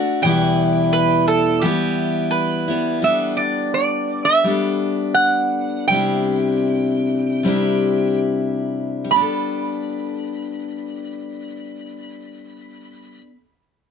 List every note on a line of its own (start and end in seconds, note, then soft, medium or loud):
0.00 0.25 A3 soft
0.00 0.24 D4 soft
0.00 0.24 F#4 soft
0.00 0.22 F#5 medium
0.22 1.63 E2 medium
0.22 1.63 B2 medium
0.22 1.61 E3 medium
0.22 1.62 G3 medium
0.22 2.63 G5 medium
0.27 1.63 B3 medium
0.27 1.64 E4 medium
0.93 1.27 B4 medium
1.28 1.64 A4 medium
1.62 2.68 E3 medium
1.62 2.68 G3 medium
1.62 2.68 B3 medium
1.62 2.67 E4 medium
1.62 2.28 G4 medium
2.31 2.98 B4 medium
2.68 3.02 E3 soft
2.68 3.01 G3 soft
2.68 3.02 B3 soft
2.68 3.03 E4 medium
3.02 4.44 G3 medium
3.02 4.44 B3 medium
3.02 4.47 D4 medium
3.02 3.40 E5 medium
3.07 4.46 A4 medium
3.37 3.70 D5 medium
3.74 4.28 D5 medium
4.25 5.11 E5 medium
4.44 5.90 G3 medium
4.44 5.91 B3 medium
4.44 5.92 D4 medium
4.49 5.92 A4 medium
5.14 5.87 F#5 medium
5.88 7.42 C3 medium
5.88 7.43 G3 medium
5.88 8.20 G5 medium
5.92 7.45 C4 medium
5.92 7.45 D4 medium
5.92 7.46 E4 medium
7.43 9.10 C3 medium
7.43 9.03 G3 medium
7.43 9.11 C4 medium
7.47 9.12 D4 medium
7.47 9.13 E4 medium
9.04 13.19 G3 medium
9.11 13.26 B3 medium
9.11 13.21 B5 medium
9.16 13.31 D4 medium
9.21 13.36 A4 medium